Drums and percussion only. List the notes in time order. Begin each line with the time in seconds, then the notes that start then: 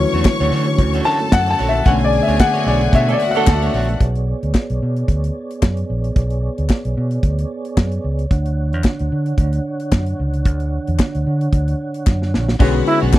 0.13 closed hi-hat
0.25 kick, snare, clap
0.41 closed hi-hat
0.52 open hi-hat
0.67 closed hi-hat
0.79 kick, closed hi-hat
0.94 closed hi-hat
1.05 open hi-hat
1.20 closed hi-hat
1.32 kick, snare, clap
1.47 closed hi-hat
1.59 open hi-hat
1.74 closed hi-hat
1.86 kick, closed hi-hat
2.00 closed hi-hat
2.12 open hi-hat
2.28 closed hi-hat
2.40 kick, snare, clap
2.55 closed hi-hat
2.67 open hi-hat
2.81 closed hi-hat
2.93 kick, closed hi-hat
3.09 closed hi-hat
3.20 open hi-hat
3.35 closed hi-hat
3.47 kick, snare, clap
3.62 closed hi-hat
3.74 open hi-hat
3.89 closed hi-hat
4.00 kick, closed hi-hat
4.15 closed hi-hat
4.43 closed hi-hat
4.54 kick, snare, clap
4.70 closed hi-hat
4.97 closed hi-hat
5.08 kick, closed hi-hat
5.24 closed hi-hat
5.51 closed hi-hat
5.62 kick, snare, clap
5.77 closed hi-hat
6.04 closed hi-hat
6.16 kick, closed hi-hat
6.30 closed hi-hat
6.58 closed hi-hat
6.69 kick, snare, clap
6.85 closed hi-hat
7.11 closed hi-hat
7.23 kick, closed hi-hat
7.39 closed hi-hat
7.65 closed hi-hat
7.77 kick, snare, clap
7.92 closed hi-hat
8.19 closed hi-hat
8.31 kick, closed hi-hat
8.46 closed hi-hat
8.73 closed hi-hat
8.84 kick, snare, clap
8.99 closed hi-hat
9.26 closed hi-hat
9.38 kick, closed hi-hat
9.53 closed hi-hat
9.80 closed hi-hat
9.92 kick, snare, clap
10.06 closed hi-hat
10.34 closed hi-hat
10.45 kick, closed hi-hat
10.60 closed hi-hat
10.87 closed hi-hat
10.99 kick, snare, clap
11.15 closed hi-hat
11.41 closed hi-hat
11.53 kick, closed hi-hat
11.68 closed hi-hat
11.94 closed hi-hat
12.07 kick, snare, clap
12.22 snare
12.34 snare
12.49 snare
12.60 kick, crash
12.86 open hi-hat
13.13 kick, snare, clap, closed hi-hat